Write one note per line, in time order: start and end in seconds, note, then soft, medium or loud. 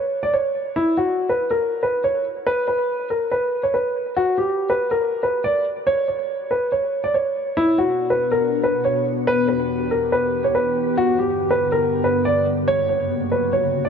0.00 0.21 C#5 medium
0.23 0.33 D5 medium
0.34 0.74 C#5 medium
0.76 0.96 E4 loud
0.97 1.27 F#4 medium
1.29 1.49 B4 medium
1.51 1.81 A#4 medium
1.83 2.02 B4 medium
2.04 2.24 C#5 medium
2.47 2.66 B4 loud
2.68 3.08 B4 medium
3.10 3.30 A#4 medium
3.31 3.61 B4 medium
3.63 3.73 C#5 medium
3.74 4.14 B4 medium
4.17 4.36 F#4 loud
4.38 4.68 G4 medium
4.70 4.89 B4 medium
4.91 5.21 A#4 medium
5.23 5.43 B4 medium
5.44 5.64 D5 medium
5.87 6.06 C#5 loud
6.08 6.48 C#5 medium
6.51 6.70 B4 medium
6.72 7.02 C#5 medium
7.04 7.14 D5 medium
7.14 7.54 C#5 medium
7.57 9.26 B2 medium
7.57 10.94 B3 medium
7.57 9.26 D4 medium
7.57 7.77 E4 loud
7.57 9.26 F#4 medium
7.78 8.08 F#4 medium
8.10 8.30 B4 medium
8.31 8.61 A#4 medium
8.64 8.83 B4 medium
8.85 9.04 C#5 medium
9.27 10.96 E2 medium
9.27 10.96 E3 medium
9.27 12.64 G4 medium
9.27 9.47 B4 loud
9.48 9.88 B4 medium
9.91 10.11 A#4 medium
10.12 10.42 B4 medium
10.44 10.54 C#5 medium
10.55 10.95 B4 medium
10.97 12.66 G2 medium
10.97 12.66 D3 medium
10.97 12.66 B3 medium
10.97 11.17 F#4 loud
11.19 11.49 G4 medium
11.51 11.70 B4 medium
11.72 12.02 A#4 medium
12.04 12.24 B4 medium
12.25 12.45 D5 medium
12.68 13.89 F#2 medium
12.68 13.89 C#3 medium
12.68 13.89 A#3 medium
12.68 13.89 F#4 medium
12.68 12.87 C#5 loud
12.89 13.29 C#5 medium
13.32 13.51 B4 medium
13.53 13.83 C#5 medium
13.85 13.89 D5 medium